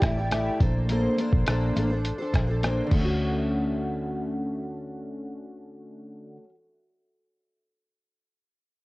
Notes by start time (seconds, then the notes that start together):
0.02 A1 A3 E4, kick, cross-stick, closed hi-hat
0.06 G4 D5
0.17 E4 G4 D5
0.31 A3 E4 G4 D5, cross-stick, closed hi-hat
0.60 A#1 A#3 D4 A4 C5, kick, closed hi-hat
0.89 A#3 D4 A4 C5, closed hi-hat
1.18 A#3 D4 A4 C5, closed hi-hat
1.33 A#1, kick
1.46 A#1 A#3 D4 A4 C5, cross-stick, closed hi-hat
1.76 A1 A#3 D4 A4 C5, closed hi-hat
1.89 D4 A4 C5
2.05 closed hi-hat
2.18 D4 A4 C5
2.34 A#1 A#3 D4 A4 C5, kick, cross-stick, closed hi-hat
2.47 D4 A4 C5
2.63 A#3 D4 A4 C5, cross-stick, closed hi-hat
2.86 D3
2.91 D2 A3, kick, crash
2.99 C#4
3.04 F#4